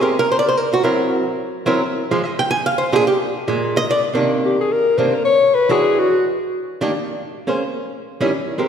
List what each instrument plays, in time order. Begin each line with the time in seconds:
0.01 hollow-body jazz guitar G#3 C4 G4 A#4
0.19 hollow-body jazz guitar A#4
0.32 hollow-body jazz guitar C5
0.39 hollow-body jazz guitar D5
0.48 hollow-body jazz guitar C5
0.57 hollow-body jazz guitar A#4
0.73 hollow-body jazz guitar F#4
0.83 hollow-body jazz guitar F#3 C4 E4 A#4
1.66 hollow-body jazz guitar F#3 C4 E4 A#4
2.11 hollow-body jazz guitar F3 G#3
2.24 hollow-body jazz guitar D#5
2.39 hollow-body jazz guitar G5
2.51 hollow-body jazz guitar G#5
2.66 hollow-body jazz guitar F5
2.78 hollow-body jazz guitar C5
2.92 hollow-body jazz guitar A#2 G#3 D4 G4 G#4
3.07 hollow-body jazz guitar G4
3.48 hollow-body jazz guitar A#2 G#3
3.77 hollow-body jazz guitar D#5
3.91 hollow-body jazz guitar D5
4.13 hollow-body jazz guitar C3 D#3 A#3 D4
4.45 alto saxophone G4
4.61 alto saxophone G#4
4.72 alto saxophone A#4
4.98 hollow-body jazz guitar C3 D#3 A#3 D4, alto saxophone C5
5.14 alto saxophone A#4
5.25 alto saxophone C#5
5.54 alto saxophone B4
5.69 hollow-body jazz guitar E3 G#3 D4 F#4, alto saxophone G#4
5.99 alto saxophone F#4
6.81 hollow-body jazz guitar D#3 A#3 D4 G4
7.47 hollow-body jazz guitar A#3 C#4 G#4 C5
8.21 hollow-body jazz guitar D#3 G3 C#4 E4
8.58 hollow-body jazz guitar G#3 C4 G4 A#4